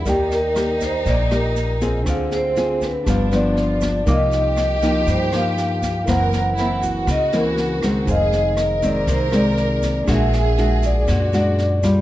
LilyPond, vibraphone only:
\new Staff \with { instrumentName = "Vibraphone" } { \time 4/4 \key ees \major \tempo 4 = 120 g'8 bes'4 c''8 d''8 bes'4 r8 | aes'8 c''4 ces''4 d''4. | \key c \minor ees''2 c''8 f''4. | fis''2 ees''8 ais'4. |
ees''4. d''8 c''8 d''4. | e''4. d''4 d''4. | }